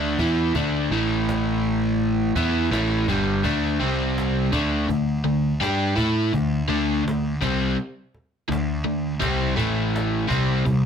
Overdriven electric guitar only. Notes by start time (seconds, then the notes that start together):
Already playing: D3 A3 D4
0.19 E3 B3 E4
0.55 D3 A3 D4
0.92 A2 E3 A3
2.36 E3 B3 E4
2.71 A2 E3 A3
3.08 G2 D3 G3
3.43 D3 A3 D4
3.79 C3 G3 C4
4.52 D3 A3 D4
4.88 D3 A3
5.24 D3 A3
5.60 G3 D4 G4
5.96 A3 E4 A4
6.33 D3 A3
6.68 D3 A3 D4
7.04 D3 A3
7.41 C3 G3 C4
8.48 D3 A3
8.85 D3 A3
9.20 C3 G3 C4
9.56 A2 E3 A3
10.28 C3 G3 C4
10.65 C3 G3